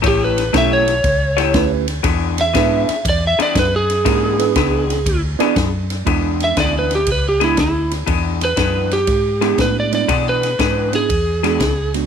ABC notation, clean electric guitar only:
X:1
M:4/4
L:1/8
Q:"Swing" 1/4=119
K:Emix
V:1 name="Clean electric guitar"
[A,E=Gc] z [A,EGc] z2 [A,EGc] z2 | [E,B,DG] z [E,B,DG] z2 [E,B,DG] z2 | [E,B,DG] z [E,B,DG] z2 [E,B,DG] z2 | [E,B,DG] z [E,B,DG] z2 [E,B,DG] z2 |
[E,B,DG] z [E,B,DG] z2 [E,B,DG] z2 | [E,B,DG] z [E,B,DG] z2 [E,B,DG] z2 |]